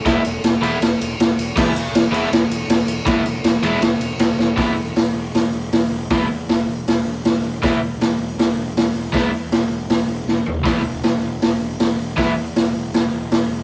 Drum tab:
CC |--------|x-------|--------|--------|
RD |xxxxxxxx|-xxxxxxx|xxxxxxx-|--------|
HH |--------|--------|--------|o-o-o-o-|
SD |o-o-o-o-|o-o-o-o-|o-o-o-oo|o-o-o-o-|
FT |--------|--------|--------|--------|
BD |o-------|o-------|o-------|o-------|

CC |--------|--------|--------|--------|
RD |--------|--------|--------|--------|
HH |o-o-o-o-|o-o-o-o-|o-o-o---|o-o-o-o-|
SD |o-o-o-o-|o-o-o-o-|o-o-o-o-|o-o-o-o-|
FT |--------|--------|-------o|--------|
BD |o-------|o-------|o-------|o-------|

CC |--------|
RD |--------|
HH |o-o-o-o-|
SD |o-o-o-o-|
FT |--------|
BD |o-------|